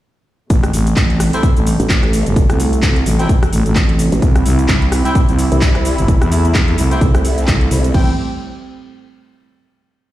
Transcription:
0.50 0.72 A1 loud
0.50 7.90 C3 medium
0.50 2.34 G3 medium
0.50 4.18 A3 loud
0.50 kick loud
0.50 closed hi-hat medium
0.50 shaker soft
0.63 cross-stick medium
0.63 closed hi-hat soft
0.63 shaker soft
0.73 0.95 A1 loud
0.73 open hi-hat loud
0.73 shaker medium
0.87 closed hi-hat medium
0.87 shaker soft
0.96 1.31 A1 medium
0.96 kick loud
0.96 clap loud
0.96 closed hi-hat medium
0.96 shaker soft
1.10 closed hi-hat soft
1.20 cross-stick medium
1.20 open hi-hat loud
1.20 shaker medium
1.33 1.44 E4 loud
1.33 1.44 A4 medium
1.33 1.44 C5 medium
1.33 1.44 G5 loud
1.33 closed hi-hat medium
1.33 shaker soft
1.43 kick loud
1.43 closed hi-hat medium
1.43 shaker soft
1.56 1.78 A1 loud
1.56 closed hi-hat soft
1.56 shaker soft
1.67 open hi-hat loud
1.67 shaker medium
1.80 2.24 A1 medium
1.80 closed hi-hat medium
1.80 shaker soft
1.89 kick loud
1.89 clap loud
1.89 closed hi-hat medium
1.89 shaker soft
2.03 cross-stick medium
2.03 closed hi-hat soft
2.13 open hi-hat loud
2.13 shaker medium
2.26 2.47 G1 medium
2.26 closed hi-hat medium
2.26 shaker soft
2.36 4.20 F#3 medium
2.36 kick loud
2.36 closed hi-hat medium
2.36 shaker soft
2.49 2.81 C2 loud
2.49 cross-stick medium
2.49 closed hi-hat soft
2.49 shaker soft
2.60 open hi-hat loud
2.60 shaker medium
2.73 closed hi-hat medium
2.73 shaker soft
2.82 3.04 C2 loud
2.82 kick loud
2.82 clap loud
2.82 closed hi-hat medium
2.82 shaker soft
2.96 closed hi-hat soft
3.06 3.28 A1 medium
3.06 open hi-hat loud
3.06 shaker medium
3.19 3.30 E4 loud
3.19 3.30 A4 medium
3.19 3.30 C5 medium
3.19 3.30 G5 loud
3.19 closed hi-hat medium
3.19 shaker soft
3.29 kick loud
3.29 closed hi-hat medium
3.29 shaker soft
3.43 cross-stick medium
3.43 closed hi-hat soft
3.43 shaker soft
3.52 3.64 A1 loud
3.52 open hi-hat loud
3.52 shaker medium
3.66 4.10 A1 loud
3.66 closed hi-hat medium
3.66 shaker soft
3.75 kick loud
3.75 clap loud
3.75 closed hi-hat medium
3.75 shaker soft
3.89 closed hi-hat soft
3.99 open hi-hat loud
3.99 shaker medium
4.12 4.21 A1 loud
4.12 closed hi-hat medium
4.12 shaker soft
4.22 4.44 C2 loud
4.22 6.06 G3 medium
4.22 7.91 E4 loud
4.22 kick loud
4.22 closed hi-hat medium
4.22 shaker soft
4.36 cross-stick medium
4.36 closed hi-hat soft
4.36 shaker soft
4.46 4.67 C2 loud
4.46 open hi-hat loud
4.46 shaker medium
4.59 closed hi-hat medium
4.59 shaker soft
4.68 5.03 C2 loud
4.68 kick loud
4.68 clap loud
4.68 closed hi-hat medium
4.68 shaker soft
4.82 closed hi-hat soft
4.92 cross-stick medium
4.92 open hi-hat loud
4.92 shaker medium
5.05 5.16 E4 loud
5.05 5.16 G4 medium
5.05 5.16 C5 medium
5.05 5.16 G5 loud
5.05 closed hi-hat medium
5.05 shaker soft
5.15 kick loud
5.15 closed hi-hat medium
5.15 shaker soft
5.29 5.50 C2 loud
5.29 closed hi-hat soft
5.29 shaker soft
5.39 open hi-hat loud
5.39 shaker medium
5.52 5.96 C2 loud
5.52 closed hi-hat medium
5.52 shaker soft
5.61 kick loud
5.61 clap loud
5.61 closed hi-hat medium
5.61 shaker soft
5.75 cross-stick medium
5.75 closed hi-hat soft
5.85 open hi-hat loud
5.85 shaker medium
5.98 6.19 G1 loud
5.98 closed hi-hat medium
5.98 shaker soft
6.08 7.93 A3 medium
6.08 kick loud
6.08 closed hi-hat medium
6.08 shaker soft
6.22 6.53 E2 loud
6.22 cross-stick medium
6.22 closed hi-hat soft
6.22 shaker soft
6.32 open hi-hat loud
6.32 shaker medium
6.45 closed hi-hat soft
6.45 shaker soft
6.54 6.76 E2 loud
6.54 kick loud
6.54 clap loud
6.54 closed hi-hat medium
6.54 shaker soft
6.68 closed hi-hat soft
6.78 7.00 C2 loud
6.78 open hi-hat loud
6.78 shaker medium
6.91 7.02 E4 loud
6.91 7.02 G4 medium
6.91 7.02 C5 medium
6.91 7.02 G5 loud
6.91 closed hi-hat medium
6.91 shaker soft
7.01 7.46 C2 medium
7.01 kick loud
7.01 closed hi-hat medium
7.01 shaker soft
7.15 cross-stick medium
7.15 closed hi-hat soft
7.15 shaker soft
7.25 open hi-hat loud
7.25 shaker medium
7.38 closed hi-hat medium
7.38 shaker soft
7.47 7.69 C2 medium
7.47 kick loud
7.47 clap loud
7.47 closed hi-hat medium
7.47 shaker soft
7.61 closed hi-hat soft
7.71 7.93 C2 loud
7.71 open hi-hat loud
7.71 shaker medium
7.84 closed hi-hat medium
7.84 shaker soft
7.94 8.16 A1 loud
7.94 8.16 A2 medium
7.94 8.16 G3 medium
7.94 8.16 C4 medium
7.94 8.12 E4 medium
7.94 8.12 A4 medium
7.94 8.12 C5 medium
7.94 8.12 G5 loud
7.94 kick loud
7.94 crash medium

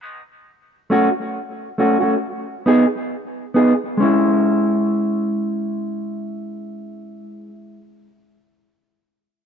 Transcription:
0.01 0.20 F#3 medium
0.01 0.20 B3 medium
0.01 0.21 D#4 medium
0.90 1.08 A3 medium
0.90 1.09 C#4 medium
0.90 1.09 F#4 medium
1.78 1.96 A3 medium
1.78 1.97 C#4 medium
1.78 1.97 F#4 medium
2.00 2.15 A3 soft
2.00 2.15 C#4 medium
2.00 2.14 F#4 medium
2.66 2.84 B3 medium
2.66 2.85 D#4 medium
2.66 2.85 G#4 medium
3.54 3.72 B3 medium
3.54 3.73 D#4 medium
3.54 3.73 G#4 medium
3.97 7.47 G#3 medium
3.97 7.50 C#4 medium
4.02 7.52 E4 medium

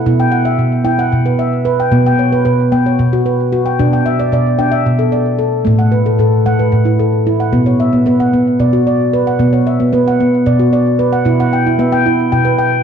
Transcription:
0.00 0.20 F#5 soft
0.06 0.48 B2 medium
0.06 0.33 E4 medium
0.20 0.60 G5 medium
0.32 0.72 F#5 medium
0.45 0.73 E5 medium
0.59 1.01 B2 medium
0.85 1.12 E4 medium
0.85 1.26 G5 medium
0.99 1.39 F#5 medium
1.12 1.75 B2 medium
1.26 1.53 B4 medium
1.39 1.79 E5 medium
1.65 1.92 B4 medium
1.80 2.05 G5 medium
1.92 2.34 B2 loud
1.92 2.19 B3 medium
2.06 2.46 G5 medium
2.19 2.59 C#5 medium
2.32 2.44 B4 medium
2.45 2.88 B2 medium
2.45 2.86 B4 medium
2.72 2.99 B3 medium
2.72 3.13 G5 medium
2.86 3.26 C#5 medium
2.99 3.62 B2 medium
3.13 3.40 F#4 medium
3.26 3.66 B4 medium
3.52 3.80 F#4 medium
3.66 3.92 G5 medium
3.79 4.21 B2 medium
3.79 4.06 D4 medium
3.93 4.33 G5 medium
4.06 4.46 E5 medium
4.20 4.32 D5 medium
4.32 4.74 B2 medium
4.32 4.73 D5 medium
4.59 4.86 D4 medium
4.59 4.99 G5 medium
4.72 5.12 E5 medium
4.86 5.49 B2 medium
4.99 5.26 A4 medium
5.12 5.53 D5 medium
5.39 5.66 A4 medium
5.65 6.08 A2 medium
5.65 5.92 A3 medium
5.79 6.19 F#5 medium
5.92 6.33 B4 medium
6.06 6.18 A4 medium
6.19 6.61 A2 medium
6.19 6.60 A4 medium
6.46 6.73 A3 medium
6.46 6.86 F#5 medium
6.59 7.00 B4 medium
6.72 7.35 A2 medium
6.85 7.13 E4 medium
6.99 7.40 A4 medium
7.27 7.53 E4 medium
7.40 7.67 F#5 soft
7.53 7.94 B2 medium
7.53 7.80 B3 medium
7.66 8.06 C#5 medium
7.80 8.20 E5 medium
7.93 8.05 B3 medium
8.06 8.32 B3 medium
8.06 8.47 B4 medium
8.20 8.60 F#5 medium
8.33 8.60 B3 medium
8.60 9.22 B2 medium
8.60 8.86 D5 medium
8.73 9.00 F#4 medium
8.87 9.27 D5 medium
9.13 9.40 B4 medium
9.27 9.67 F#5 medium
9.39 9.81 B2 medium
9.39 9.66 B3 medium
9.53 9.93 C#5 medium
9.67 10.06 E5 medium
9.80 9.91 B3 medium
9.93 10.19 B3 medium
9.93 10.33 B4 medium
10.08 10.47 F#5 medium
10.20 10.47 B3 medium
10.46 11.08 B2 medium
10.46 10.72 D5 medium
10.59 10.86 F#4 medium
10.73 11.13 D5 medium
10.99 11.26 B4 medium
11.13 11.39 F#5 medium
11.25 11.67 B2 medium
11.25 11.53 E4 medium
11.40 11.80 F#5 medium
11.53 11.91 G5 medium
11.66 11.93 E4 medium
11.79 12.20 B3 medium
11.79 12.19 E5 medium
11.92 12.31 G5 medium
12.06 12.32 E4 medium
12.32 12.83 B2 medium
12.32 12.57 G5 medium
12.45 12.72 B4 medium
12.59 12.83 G5 medium

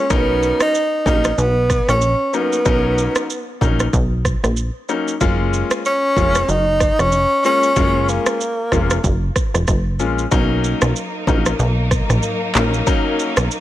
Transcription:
0.00 0.13 C#4 loud
0.10 0.53 B1 loud
0.10 0.70 F#3 medium
0.10 0.61 B3 loud
0.10 0.70 C#4 medium
0.10 0.70 D#4 loud
0.10 0.70 A#4 medium
0.10 kick loud
0.10 shaker medium
0.43 shaker medium
0.60 1.03 D#4 loud
0.60 cross-stick loud
0.60 shaker medium
0.75 shaker medium
1.06 1.33 A#1 medium
1.06 1.28 F#3 medium
1.06 1.29 A#3 medium
1.06 1.29 C#4 medium
1.06 1.29 D#4 medium
1.06 1.41 D#4 loud
1.06 kick loud
1.06 shaker medium
1.24 cross-stick medium
1.24 shaker medium
1.38 1.80 B1 loud
1.38 1.89 B3 loud
1.38 shaker medium
1.70 kick medium
1.70 cross-stick medium
1.70 shaker medium
1.88 2.15 A#1 loud
1.88 2.36 C#4 medium
1.88 cross-stick medium
1.88 shaker medium
2.01 shaker medium
2.33 2.56 F#3 medium
2.33 2.56 A#3 medium
2.33 3.62 B3 medium
2.33 2.56 C#4 medium
2.33 2.56 D#4 medium
2.33 shaker soft
2.52 shaker medium
2.65 3.08 B1 loud
2.65 3.25 F#3 medium
2.65 3.25 C#4 medium
2.65 3.25 D#4 loud
2.65 3.25 A#4 medium
2.65 kick loud
2.65 shaker medium
2.98 shaker medium
3.15 cross-stick loud
3.15 shaker medium
3.30 shaker medium
3.61 3.88 A#1 medium
3.61 3.84 F#3 medium
3.61 3.84 A#3 medium
3.61 3.84 C#4 medium
3.61 3.84 D#4 medium
3.61 kick medium
3.61 shaker soft
3.80 cross-stick medium
3.80 shaker medium
3.93 4.36 B1 loud
3.93 kick loud
3.93 shaker medium
4.25 kick medium
4.25 cross-stick medium
4.25 shaker medium
4.44 4.70 A#1 medium
4.44 cross-stick medium
4.44 shaker medium
4.57 shaker medium
4.89 5.11 F#3 medium
4.89 5.12 A#3 medium
4.89 5.12 C#4 medium
4.89 5.12 D#4 medium
4.89 shaker soft
5.08 shaker medium
5.21 5.63 F#1 loud
5.21 5.80 G#3 loud
5.21 5.80 A#3 medium
5.21 5.80 C#4 medium
5.21 5.81 F4 loud
5.21 kick loud
5.21 shaker medium
5.53 shaker medium
5.71 cross-stick loud
5.71 shaker medium
5.85 6.51 C#4 loud
5.85 shaker medium
6.16 6.43 F1 medium
6.16 6.39 G#3 medium
6.16 6.39 A#3 medium
6.16 6.39 C#4 medium
6.16 6.39 F4 medium
6.16 kick medium
6.16 shaker soft
6.35 cross-stick medium
6.35 shaker medium
6.49 6.91 F#1 loud
6.49 7.02 D#4 loud
6.49 shaker medium
6.80 kick medium
6.80 cross-stick medium
6.80 shaker medium
6.99 7.26 F1 medium
6.99 7.45 C#4 loud
6.99 cross-stick medium
6.99 shaker medium
7.12 shaker medium
7.44 7.67 G#3 medium
7.44 7.67 A#3 medium
7.44 7.67 C#4 medium
7.44 8.11 C#4 loud
7.44 7.67 F4 medium
7.44 shaker soft
7.63 shaker medium
7.76 8.19 F#1 loud
7.76 8.36 G#3 medium
7.76 8.36 A#3 medium
7.76 8.36 C#4 medium
7.76 8.36 F4 loud
7.76 kick loud
7.76 shaker medium
8.09 9.36 A#3 medium
8.09 shaker medium
8.26 cross-stick loud
8.26 shaker medium
8.41 shaker medium
8.72 8.99 F1 loud
8.72 8.94 G#3 medium
8.72 8.95 A#3 medium
8.72 8.95 C#4 medium
8.72 8.95 F4 medium
8.72 kick medium
8.72 cross-stick medium
8.72 shaker soft
8.90 cross-stick loud
8.90 shaker medium
9.04 9.31 F#1 loud
9.04 kick loud
9.04 shaker medium
9.36 kick medium
9.36 cross-stick medium
9.36 shaker medium
9.54 9.66 F1 medium
9.54 cross-stick medium
9.54 shaker medium
9.67 10.01 F#1 loud
9.67 kick medium
9.67 cross-stick medium
9.67 shaker medium
9.99 10.26 A#1 medium
9.99 10.22 G#3 medium
9.99 10.22 A#3 medium
9.99 10.22 C#4 medium
9.99 10.22 F4 medium
9.99 shaker soft
10.19 shaker medium
10.31 10.74 B1 loud
10.31 10.91 F#3 medium
10.31 13.60 F#3 medium
10.31 10.91 A#3 medium
10.31 13.60 A#3 medium
10.31 10.91 C#4 medium
10.31 13.60 D#4 medium
10.31 10.91 D#4 loud
10.31 13.60 A#4 medium
10.31 kick loud
10.31 shaker medium
10.64 shaker medium
10.81 10.93 B1 medium
10.81 cross-stick loud
10.81 shaker medium
10.96 shaker medium
11.27 11.54 A#1 loud
11.27 11.50 F#3 medium
11.27 11.50 A#3 medium
11.27 11.50 C#4 medium
11.27 11.50 D#4 medium
11.27 kick loud
11.27 shaker soft
11.46 cross-stick loud
11.46 shaker medium
11.59 12.02 B1 loud
11.59 shaker medium
11.91 kick medium
11.91 cross-stick medium
11.91 shaker medium
12.09 12.21 A#1 loud
12.09 cross-stick medium
12.09 mid tom loud
12.09 shaker medium
12.23 shaker medium
12.55 12.82 A#1 loud
12.55 12.77 F#3 medium
12.55 12.78 A#3 medium
12.55 12.78 C#4 medium
12.55 12.78 D#4 medium
12.55 clap medium
12.55 shaker soft
12.74 shaker medium
12.87 13.46 F#3 loud
12.87 13.46 A#3 medium
12.87 13.46 C#4 medium
12.87 13.46 D#4 loud
12.87 kick loud
12.87 shaker medium
13.19 shaker medium
13.37 13.49 B1 medium
13.37 cross-stick loud
13.37 shaker medium
13.51 shaker medium

